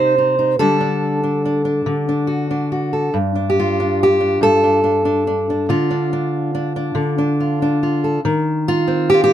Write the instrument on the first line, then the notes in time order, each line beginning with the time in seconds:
steel-string acoustic guitar
Already playing: C3 C4 D#4 C5
0.18 D#4
0.39 D#4
0.59 D3 G3 D4 A4
0.81 D4
1.23 D4
1.45 D4
1.65 D4
1.86 D3
2.09 D4
2.27 F#4
2.51 D4
2.72 F#4
2.93 A4
3.14 G2
3.35 D4
3.50 G4
3.60 F4
3.80 D4
4.03 G4
4.20 D4
4.41 G2 A4
4.63 D4
4.84 D4
5.05 D4
5.27 D4
5.50 D4
5.69 D3 F4
5.91 D4
6.13 D4
6.55 D4
6.76 D4
6.95 D3
7.18 D4
7.40 F4
7.62 D4
7.83 F4
8.04 A4
8.25 D#3
8.68 F4
8.87 C4
9.10 G4
9.14 F4
9.24 G4